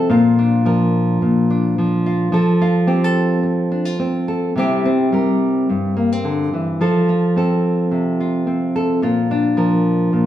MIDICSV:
0, 0, Header, 1, 3, 480
1, 0, Start_track
1, 0, Key_signature, -1, "major"
1, 0, Tempo, 557621
1, 87, Time_signature, 4, 2, 24, 8
1, 8833, End_track
2, 0, Start_track
2, 0, Title_t, "Nylon-string guitar"
2, 0, Program_c, 0, 24
2, 0, Note_on_c, 0, 48, 63
2, 0, Note_on_c, 0, 53, 78
2, 0, Note_on_c, 0, 60, 55
2, 0, Note_on_c, 0, 65, 63
2, 82, Note_on_c, 0, 46, 84
2, 86, Note_off_c, 0, 48, 0
2, 90, Note_off_c, 0, 65, 0
2, 93, Note_on_c, 0, 65, 65
2, 108, Note_off_c, 0, 60, 0
2, 332, Note_on_c, 0, 62, 60
2, 559, Note_off_c, 0, 53, 0
2, 563, Note_on_c, 0, 53, 64
2, 569, Note_on_c, 0, 70, 61
2, 1040, Note_off_c, 0, 46, 0
2, 1051, Note_on_c, 0, 46, 62
2, 1284, Note_off_c, 0, 62, 0
2, 1294, Note_on_c, 0, 62, 61
2, 1524, Note_off_c, 0, 53, 0
2, 1534, Note_on_c, 0, 53, 64
2, 1765, Note_off_c, 0, 65, 0
2, 1775, Note_on_c, 0, 65, 61
2, 1980, Note_off_c, 0, 70, 0
2, 1981, Note_off_c, 0, 46, 0
2, 1983, Note_off_c, 0, 62, 0
2, 1984, Note_off_c, 0, 65, 0
2, 1987, Note_off_c, 0, 53, 0
2, 1997, Note_on_c, 0, 53, 76
2, 2012, Note_on_c, 0, 69, 75
2, 2250, Note_on_c, 0, 65, 62
2, 2472, Note_on_c, 0, 60, 68
2, 2473, Note_off_c, 0, 69, 0
2, 2477, Note_on_c, 0, 67, 64
2, 2618, Note_off_c, 0, 67, 0
2, 2618, Note_on_c, 0, 69, 49
2, 3195, Note_off_c, 0, 65, 0
2, 3198, Note_on_c, 0, 62, 53
2, 3316, Note_off_c, 0, 62, 0
2, 3316, Note_on_c, 0, 65, 53
2, 3435, Note_off_c, 0, 60, 0
2, 3438, Note_on_c, 0, 60, 55
2, 3675, Note_off_c, 0, 69, 0
2, 3685, Note_on_c, 0, 69, 68
2, 3898, Note_off_c, 0, 69, 0
2, 3920, Note_off_c, 0, 65, 0
2, 3922, Note_on_c, 0, 48, 69
2, 3923, Note_off_c, 0, 53, 0
2, 3938, Note_on_c, 0, 55, 65
2, 3939, Note_off_c, 0, 60, 0
2, 3942, Note_on_c, 0, 60, 66
2, 3949, Note_on_c, 0, 64, 65
2, 3954, Note_on_c, 0, 67, 77
2, 4175, Note_off_c, 0, 60, 0
2, 4178, Note_on_c, 0, 60, 66
2, 4400, Note_off_c, 0, 55, 0
2, 4411, Note_on_c, 0, 55, 63
2, 4417, Note_off_c, 0, 67, 0
2, 4420, Note_on_c, 0, 70, 56
2, 4885, Note_off_c, 0, 48, 0
2, 4902, Note_on_c, 0, 43, 60
2, 5132, Note_off_c, 0, 60, 0
2, 5135, Note_on_c, 0, 58, 51
2, 5272, Note_off_c, 0, 58, 0
2, 5272, Note_on_c, 0, 60, 44
2, 5375, Note_on_c, 0, 50, 62
2, 5611, Note_off_c, 0, 50, 0
2, 5624, Note_on_c, 0, 52, 63
2, 5821, Note_off_c, 0, 55, 0
2, 5826, Note_off_c, 0, 70, 0
2, 5830, Note_off_c, 0, 64, 0
2, 5854, Note_off_c, 0, 43, 0
2, 5856, Note_off_c, 0, 52, 0
2, 5857, Note_off_c, 0, 60, 0
2, 5859, Note_on_c, 0, 53, 71
2, 5864, Note_on_c, 0, 69, 73
2, 6102, Note_on_c, 0, 65, 55
2, 6336, Note_off_c, 0, 69, 0
2, 6338, Note_on_c, 0, 60, 57
2, 6348, Note_on_c, 0, 69, 66
2, 6812, Note_on_c, 0, 48, 59
2, 7059, Note_off_c, 0, 65, 0
2, 7062, Note_on_c, 0, 65, 52
2, 7285, Note_off_c, 0, 60, 0
2, 7288, Note_on_c, 0, 60, 66
2, 7527, Note_off_c, 0, 69, 0
2, 7538, Note_on_c, 0, 69, 63
2, 7744, Note_off_c, 0, 69, 0
2, 7767, Note_on_c, 0, 46, 71
2, 7769, Note_off_c, 0, 48, 0
2, 7770, Note_off_c, 0, 65, 0
2, 7773, Note_on_c, 0, 65, 62
2, 7794, Note_off_c, 0, 60, 0
2, 8014, Note_on_c, 0, 62, 62
2, 8234, Note_off_c, 0, 53, 0
2, 8238, Note_on_c, 0, 53, 66
2, 8241, Note_on_c, 0, 70, 56
2, 8708, Note_off_c, 0, 46, 0
2, 8718, Note_on_c, 0, 46, 62
2, 8833, Note_off_c, 0, 46, 0
2, 8833, Note_off_c, 0, 53, 0
2, 8833, Note_off_c, 0, 62, 0
2, 8833, Note_off_c, 0, 65, 0
2, 8833, Note_off_c, 0, 70, 0
2, 8833, End_track
3, 0, Start_track
3, 0, Title_t, "Muted nylon-string guitar strokes"
3, 2954, Note_on_c, 9, 29, 63
3, 3040, Note_off_c, 9, 29, 0
3, 8833, End_track
0, 0, End_of_file